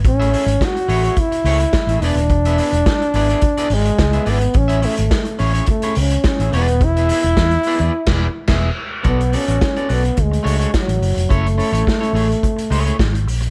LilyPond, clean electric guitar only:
\new Staff \with { instrumentName = "Clean electric guitar" } { \time 4/4 \key a \major \tempo 4 = 107 r16 <a e' gis' e''>16 <a e' gis' e''>16 r8. <a e' gis' cis''>16 <a e' gis' cis''>16 r8 <a e' gis' cis''>16 r8 <a e' gis' e''>16 <b e' gis' d''>16 r16 | r16 <b e' gis' e''>16 <b e' gis' e''>16 r8. <b e' gis' d''>16 <b e' gis' d''>16 r16 <b e' gis' d''>16 r8. <b e' gis' e''>16 <b e' gis' d''>16 r16 | r16 <cis' e' gis' e''>16 <cis' e' gis' e''>16 r8. <cis' e' gis' cis''>16 <cis' e' gis' cis''>16 r16 <cis' e' gis' cis''>16 r8. <cis' e' gis' e''>16 <b e' gis' d''>16 r16 | r16 <b e' gis' e''>16 <b e' gis' e''>16 r8. <b e' gis' d''>16 <b e' gis' d''>16 r16 <b e' gis' d''>8 r16 <b e' gis' e''>8 r8 |
<b fis' a' d''>16 r16 <b fis' a' d''>16 <b fis' a' d''>16 r16 <b fis' a' d''>16 <b fis' a' d''>16 r8. <a d' fis' cis''>16 <a d' fis' cis''>16 r4 | <cis' e' a' cis''>16 r16 <cis' e' a' cis''>16 <cis' e' a' cis''>16 r16 <cis' e' a' cis''>16 <a e' gis' cis''>16 r8. <a e' gis' cis''>16 <a e' gis' cis''>16 r4 | }